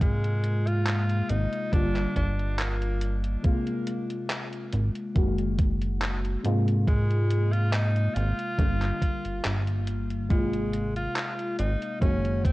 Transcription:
0.00 1.22 G#2 medium
0.00 1.64 C3 medium
0.00 1.65 G#3 medium
0.00 0.69 G#3 loud
0.00 1.65 A#3 medium
0.00 1.66 F4 loud
0.00 kick loud
0.00 closed hi-hat medium
0.24 closed hi-hat soft
0.44 closed hi-hat medium
0.67 1.31 F4 loud
0.67 closed hi-hat soft
0.87 clap loud
0.87 closed hi-hat medium
1.10 closed hi-hat soft
1.29 1.48 G#1 loud
1.29 1.74 D#4 loud
1.29 closed hi-hat medium
1.53 closed hi-hat soft
1.71 2.06 G1 loud
1.71 3.36 D3 medium
1.71 3.36 G3 medium
1.71 3.37 A#3 medium
1.71 2.15 D4 loud
1.71 3.37 F4 medium
1.71 kick loud
1.71 closed hi-hat medium
1.96 clap soft
1.96 closed hi-hat soft
2.16 3.37 G1 medium
2.16 2.56 D4 loud
2.16 kick medium
2.16 closed hi-hat medium
2.39 closed hi-hat soft
2.59 3.21 A#3 medium
2.59 clap loud
2.59 closed hi-hat medium
2.82 closed hi-hat soft
3.01 closed hi-hat loud
3.24 closed hi-hat soft
3.43 5.07 C3 medium
3.43 5.08 G#3 medium
3.43 5.08 A#3 medium
3.43 5.09 F4 medium
3.43 kick loud
3.43 closed hi-hat medium
3.67 closed hi-hat soft
3.87 closed hi-hat medium
4.10 closed hi-hat soft
4.30 clap loud
4.30 closed hi-hat medium
4.53 closed hi-hat soft
4.72 4.90 G#1 loud
4.72 closed hi-hat medium
4.95 closed hi-hat soft
5.15 6.37 F#1 medium
5.15 6.36 D#3 medium
5.15 6.36 G#3 medium
5.15 6.37 A#3 medium
5.15 6.38 F#4 medium
5.15 kick loud
5.15 closed hi-hat medium
5.39 closed hi-hat soft
5.59 kick loud
5.59 closed hi-hat loud
5.82 closed hi-hat soft
6.02 clap loud
6.02 closed hi-hat medium
6.25 closed hi-hat soft
6.43 8.09 G#2 medium
6.43 8.50 C3 medium
6.43 8.51 G#3 medium
6.43 8.51 A#3 medium
6.43 8.52 F4 loud
6.43 closed hi-hat medium
6.68 closed hi-hat soft
6.88 7.54 G#3 loud
6.88 kick loud
6.88 closed hi-hat medium
7.11 closed hi-hat soft
7.31 closed hi-hat medium
7.52 7.74 F4 loud
7.52 closed hi-hat soft
7.72 8.16 D#4 loud
7.72 clap loud
7.72 closed hi-hat medium
7.96 closed hi-hat soft
8.15 8.33 G#1 loud
8.15 9.87 F4 loud
8.15 closed hi-hat medium
8.39 closed hi-hat soft
8.58 8.92 G1 loud
8.58 10.22 D3 medium
8.58 10.22 G3 medium
8.58 10.23 A#3 medium
8.58 10.23 F4 medium
8.58 kick loud
8.58 closed hi-hat medium
8.82 clap soft
8.82 closed hi-hat soft
9.02 kick medium
9.02 closed hi-hat medium
9.25 9.41 G1 soft
9.25 closed hi-hat soft
9.45 10.32 G1 medium
9.45 clap loud
9.45 closed hi-hat medium
9.67 closed hi-hat soft
9.87 closed hi-hat medium
10.10 closed hi-hat soft
10.29 11.08 G#1 medium
10.29 11.93 C3 medium
10.29 11.94 G#3 medium
10.29 10.92 G#3 medium
10.29 11.94 A#3 medium
10.29 11.94 F4 medium
10.29 kick loud
10.29 closed hi-hat medium
10.53 closed hi-hat soft
10.73 closed hi-hat medium
10.96 11.55 F4 loud
10.96 closed hi-hat soft
11.16 clap loud
11.16 closed hi-hat medium
11.39 closed hi-hat soft
11.59 11.77 G#1 loud
11.59 11.99 D#4 loud
11.59 closed hi-hat medium
11.82 closed hi-hat soft
12.00 12.53 F#1 medium
12.00 12.53 D#3 medium
12.00 12.53 G#3 medium
12.00 12.53 A#3 medium
12.00 12.46 C#4 loud
12.00 12.53 F#4 medium
12.00 kick loud
12.00 closed hi-hat medium
12.25 closed hi-hat soft
12.44 12.53 C4 loud
12.44 kick loud
12.44 closed hi-hat medium

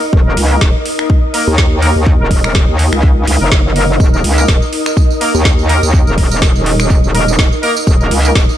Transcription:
0.00 8.58 D#4 medium
0.00 8.58 A#4 medium
0.00 8.58 D#5 medium
0.00 8.58 D#6 medium
0.13 0.35 D#1 loud
0.13 kick loud
0.26 0.35 A#3 medium
0.26 0.35 D#4 medium
0.26 0.35 A#4 medium
0.37 0.60 C#2 loud
0.37 open hi-hat loud
0.51 0.59 A#3 medium
0.51 0.59 D#4 medium
0.51 0.59 A#4 medium
0.61 0.73 D#1 medium
0.61 kick loud
0.61 snare loud
0.86 open hi-hat loud
0.99 finger snap medium
1.10 kick loud
1.34 1.44 A#3 medium
1.34 1.44 D#4 medium
1.34 1.44 A#4 medium
1.34 open hi-hat loud
1.48 1.94 D#2 medium
1.58 kick loud
1.58 snare loud
1.82 1.93 A#3 medium
1.82 1.93 D#4 medium
1.82 1.93 A#4 loud
1.82 open hi-hat medium
1.96 2.18 D#2 medium
2.07 kick loud
2.20 2.66 D#1 loud
2.20 2.28 A#3 medium
2.20 2.28 D#4 medium
2.20 2.28 A#4 medium
2.31 kick medium
2.31 open hi-hat loud
2.44 2.52 A#3 medium
2.44 2.52 D#4 medium
2.44 2.52 A#4 medium
2.44 finger snap medium
2.55 kick loud
2.55 snare loud
2.69 2.90 D#2 loud
2.79 open hi-hat medium
2.93 3.26 C#2 loud
2.93 finger snap medium
3.03 kick loud
3.27 3.39 C#2 medium
3.27 open hi-hat loud
3.41 3.50 F#1 medium
3.41 3.49 A#3 medium
3.41 3.49 D#4 medium
3.41 3.49 A#4 medium
3.52 3.98 F#1 loud
3.52 kick loud
3.52 snare loud
3.76 3.86 A#3 medium
3.76 3.86 D#4 medium
3.76 3.86 A#4 medium
3.76 open hi-hat medium
4.00 4.23 D#1 loud
4.00 kick loud
4.00 tambourine medium
4.14 4.22 A#3 medium
4.14 4.22 D#4 medium
4.14 4.22 A#4 medium
4.14 tambourine soft
4.24 4.47 C#2 loud
4.24 open hi-hat loud
4.38 4.46 A#3 medium
4.38 4.46 D#4 medium
4.38 4.46 A#4 medium
4.38 tambourine medium
4.48 4.60 D#1 medium
4.48 kick loud
4.48 snare loud
4.62 tambourine soft
4.73 open hi-hat medium
4.86 finger snap medium
4.86 tambourine medium
4.97 kick loud
4.97 tambourine medium
5.10 tambourine soft
5.21 5.31 A#3 medium
5.21 5.31 D#4 medium
5.21 5.31 A#4 medium
5.21 open hi-hat loud
5.35 5.81 D#2 medium
5.35 tambourine medium
5.45 kick loud
5.45 snare loud
5.45 tambourine medium
5.59 tambourine soft
5.69 5.80 A#3 loud
5.69 5.80 D#4 medium
5.69 5.80 A#4 loud
5.69 open hi-hat medium
5.83 6.05 D#2 medium
5.83 tambourine medium
5.94 kick loud
5.94 tambourine medium
6.07 6.53 D#1 medium
6.07 6.15 A#3 medium
6.07 6.15 D#4 medium
6.07 6.15 A#4 medium
6.07 tambourine soft
6.18 kick medium
6.18 open hi-hat loud
6.31 6.40 A#3 medium
6.31 6.40 D#4 medium
6.31 6.40 A#4 medium
6.31 tambourine medium
6.42 kick loud
6.42 snare loud
6.42 tambourine medium
6.55 7.02 D#1 loud
6.55 tambourine soft
6.66 open hi-hat medium
6.80 finger snap medium
6.80 tambourine medium
6.90 kick loud
6.90 tambourine medium
7.04 7.37 D#1 loud
7.04 tambourine soft
7.15 7.25 A#3 medium
7.15 7.25 D#4 medium
7.15 7.25 A#4 medium
7.15 open hi-hat loud
7.28 tambourine medium
7.39 7.50 D#1 loud
7.39 kick loud
7.39 snare loud
7.52 tambourine soft
7.63 7.73 A#3 loud
7.63 7.73 D#4 medium
7.63 7.73 A#4 loud
7.63 open hi-hat medium
7.77 tambourine medium
7.87 8.10 D#1 medium
7.87 kick loud
7.87 tambourine medium
8.01 8.09 A#3 medium
8.01 8.09 D#4 medium
8.01 8.09 A#4 medium
8.01 tambourine soft
8.11 8.34 C#2 loud
8.11 open hi-hat loud
8.25 8.33 A#3 medium
8.25 8.33 D#4 medium
8.25 8.33 A#4 medium
8.25 tambourine medium
8.35 8.47 D#1 loud
8.35 kick loud
8.35 snare loud
8.35 tambourine medium
8.49 tambourine soft

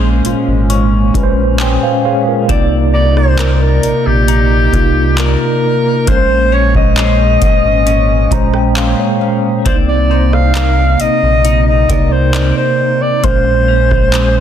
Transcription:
0.00 0.21 A#1 loud
0.00 0.46 A#2 medium
0.00 0.47 G#3 medium
0.00 2.45 G#3 medium
0.00 2.45 A#3 medium
0.00 2.49 A#3 medium
0.00 0.50 C#4 medium
0.00 0.69 C#4 medium
0.00 2.46 C#4 medium
0.00 1.30 G#4 medium
0.00 1.59 G#4 medium
0.00 0.48 C5 medium
0.00 1.60 C5 medium
0.25 0.34 G#1 soft
0.25 2.20 F4 medium
0.25 closed hi-hat medium
0.47 1.11 G#1 medium
0.70 1.58 C#4 medium
0.70 closed hi-hat medium
1.14 1.78 A#1 medium
1.14 2.31 A#2 medium
1.14 2.32 G#3 medium
1.14 2.32 C#4 medium
1.14 1.22 B4 medium
1.14 kick medium
1.14 closed hi-hat medium
1.23 1.64 C5 loud
1.60 2.58 C#4 medium
1.60 2.58 G#4 medium
1.60 2.50 C5 medium
1.60 1.82 C#5 medium
1.60 1.81 G5 medium
1.60 2.02 G#5 medium
1.60 clap loud
1.60 closed hi-hat medium
1.83 2.04 C5 medium
1.83 2.04 F5 medium
2.05 2.26 G#4 medium
2.05 2.26 C#5 medium
2.05 2.46 F5 medium
2.28 2.70 F4 medium
2.28 2.70 A#4 medium
2.48 3.79 C2 loud
2.48 4.04 C3 medium
2.48 6.04 C3 medium
2.48 13.20 A#3 medium
2.48 4.05 A#3 medium
2.48 6.07 C4 medium
2.48 6.04 D#4 medium
2.48 4.05 D#4 medium
2.48 6.04 D5 medium
2.48 3.38 D5 medium
2.48 4.06 D5 loud
2.48 kick loud
2.48 closed hi-hat medium
2.94 3.37 D#4 medium
2.94 3.15 D5 medium
3.17 3.52 C5 medium
3.17 cross-stick medium
3.38 4.27 D#4 medium
3.38 5.18 A#4 medium
3.38 5.33 A#4 medium
3.38 5.18 D5 medium
3.38 clap loud
3.38 closed hi-hat medium
3.55 3.63 C5 medium
3.62 4.08 A#4 medium
3.83 3.93 A#1 soft
3.83 closed hi-hat medium
4.06 4.69 A#1 medium
4.06 5.18 G4 loud
4.28 5.17 D#4 medium
4.28 closed hi-hat medium
4.72 5.36 C2 medium
4.72 5.90 C3 medium
4.72 5.90 A#3 medium
4.72 5.91 D#4 medium
4.72 5.91 F4 medium
4.72 kick medium
4.72 closed hi-hat medium
5.18 6.16 D#4 medium
5.18 6.97 A#4 medium
5.18 6.10 A#4 loud
5.18 6.07 D5 medium
5.18 clap loud
5.18 closed hi-hat medium
6.07 7.38 A#1 loud
6.07 7.63 A#2 medium
6.07 9.62 G#3 medium
6.07 7.63 G#3 medium
6.07 9.65 A#3 loud
6.07 9.62 C#4 medium
6.07 7.64 C#4 medium
6.07 6.15 A#4 medium
6.07 6.98 C5 medium
6.07 6.55 C5 loud
6.07 kick loud
6.07 closed hi-hat medium
6.17 7.68 C5 medium
6.52 6.96 C#4 medium
6.52 8.46 C#5 medium
6.52 6.75 C#5 loud
6.75 9.17 D#5 loud
6.75 kick medium
6.97 7.85 C#4 medium
6.97 8.75 G#4 medium
6.97 8.77 C5 medium
6.97 clap loud
6.97 closed hi-hat medium
7.42 7.51 G#1 soft
7.42 kick medium
7.42 closed hi-hat medium
7.64 8.27 G#1 medium
7.86 8.75 C#4 medium
7.86 closed hi-hat medium
8.31 8.94 A#1 medium
8.31 9.48 A#2 medium
8.31 9.48 G#3 medium
8.31 9.49 C#4 medium
8.31 9.49 C5 loud
8.31 8.53 A#5 medium
8.31 kick medium
8.31 closed hi-hat medium
8.54 8.75 G5 medium
8.54 cross-stick medium
8.76 9.74 C#4 medium
8.76 9.75 G#4 medium
8.76 9.66 C5 medium
8.76 8.97 F5 medium
8.76 clap loud
8.76 closed hi-hat medium
8.99 9.62 C#5 medium
9.21 10.06 F5 medium
9.65 10.96 C2 loud
9.65 11.21 C3 medium
9.65 13.20 C3 medium
9.65 11.22 A#3 medium
9.65 13.23 C4 medium
9.65 11.43 C4 medium
9.65 9.73 D4 medium
9.65 13.20 D#4 medium
9.65 9.76 C5 loud
9.65 10.55 D5 medium
9.65 11.23 D5 medium
9.65 kick loud
9.65 closed hi-hat medium
9.74 11.25 D#4 medium
9.89 10.35 D5 medium
10.10 10.54 D#4 medium
10.10 12.04 C5 medium
10.33 11.02 F5 loud
10.33 cross-stick medium
10.55 11.43 D#4 medium
10.55 12.34 A#4 medium
10.55 clap loud
10.55 closed hi-hat medium
11.00 11.09 A#1 soft
11.00 11.66 D#5 loud
11.00 closed hi-hat medium
11.22 11.85 A#1 medium
11.44 13.22 C4 medium
11.44 12.33 D#4 medium
11.44 closed hi-hat medium
11.67 12.13 D#5 medium
11.89 12.52 C2 medium
11.89 13.06 C3 medium
11.89 13.06 A#3 medium
11.89 13.07 D#4 medium
11.89 13.65 A#4 medium
11.89 13.08 D5 medium
11.89 kick medium
11.89 closed hi-hat medium
12.12 12.56 C5 medium
12.34 13.33 D#4 medium
12.34 14.13 A#4 medium
12.34 13.24 D5 medium
12.34 clap loud
12.34 closed hi-hat medium
12.57 13.03 C5 medium
13.01 13.25 D5 medium
13.23 14.40 A#1 loud
13.23 14.40 A#2 medium
13.23 14.40 G#3 medium
13.23 14.40 A#3 medium
13.23 14.40 C#4 medium
13.23 14.40 C5 loud
13.23 14.14 C5 medium
13.23 14.40 C5 medium
13.23 kick loud
13.23 closed hi-hat medium
13.68 14.11 C#4 medium
13.91 kick medium
13.91 cross-stick medium
14.13 14.40 C#4 medium
14.13 14.40 G#4 medium
14.13 14.40 C5 medium
14.13 clap loud
14.13 closed hi-hat medium

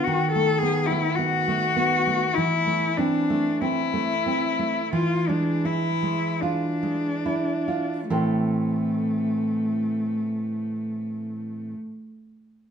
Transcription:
0.04 2.32 D#3 medium
0.04 0.31 F#4 medium
0.32 0.78 A3 soft
0.32 0.60 A4 medium
0.58 0.88 G#4 medium
0.62 1.06 B3 soft
0.87 1.17 E4 medium
0.91 1.35 A3 soft
1.16 1.64 B3 soft
1.16 2.36 F#4 medium
1.48 1.94 A3 soft
1.76 2.24 B3 soft
2.07 2.36 A3 soft
2.35 4.90 E3 medium
2.35 2.98 E4 medium
2.66 3.16 A3 soft
2.97 3.49 C4 medium
2.97 3.62 D4 medium
3.30 3.81 A3 soft
3.61 4.13 C4 soft
3.61 4.93 E4 medium
3.94 4.46 A3 soft
4.26 4.80 C4 soft
4.59 4.93 A3 soft
4.93 8.05 E3 medium
4.93 5.30 F4 medium
5.28 5.87 G#3 soft
5.28 5.67 D4 medium
5.65 6.25 E4 soft
5.65 6.42 E4 medium
6.03 6.65 G#3 soft
6.41 8.08 D4 medium
6.41 7.07 F4 soft
6.83 7.51 G#3 soft
7.26 7.93 E4 soft
7.68 8.10 F4 soft
8.08 11.74 A2 soft
8.08 11.74 E3 soft
8.08 11.72 A3 medium
8.08 11.74 C4 soft
8.08 11.74 E4 soft
8.08 11.75 A4 soft
8.08 11.75 C5 soft

